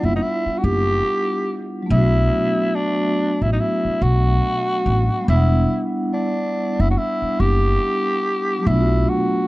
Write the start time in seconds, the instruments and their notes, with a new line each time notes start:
Already playing: vibraphone G3 B3 D4 E4 F#5
0.03 upright bass F#1, tenor saxophone E4
0.16 tenor saxophone D#4
0.22 tenor saxophone E4
0.46 muted upright bass stroke
0.58 tenor saxophone F#4
0.64 upright bass F#1, tenor saxophone G4
1.82 vibraphone F#3 A3
1.90 upright bass B1, vibraphone B3 D4, tenor saxophone E4
1.97 vibraphone F#4
2.75 tenor saxophone D4
3.42 upright bass A1, tenor saxophone E4
3.53 tenor saxophone D#4
3.60 tenor saxophone E4
3.85 muted upright bass stroke
4.02 upright bass B1, tenor saxophone F#4
4.86 upright bass A1
5.21 vibraphone G3 B3
5.28 upright bass E1, vibraphone D4 E4, tenor saxophone E4
5.35 vibraphone F#5
6.14 tenor saxophone D4
6.80 upright bass F#1, tenor saxophone E4
6.91 tenor saxophone F#4
6.98 tenor saxophone E4
7.22 muted upright bass stroke
7.40 upright bass F#1, tenor saxophone G4
8.59 vibraphone F#3 A3
8.66 upright bass B1, vibraphone B3 D4, tenor saxophone E4
8.74 vibraphone F4
8.80 vibraphone F#4
9.09 tenor saxophone F#4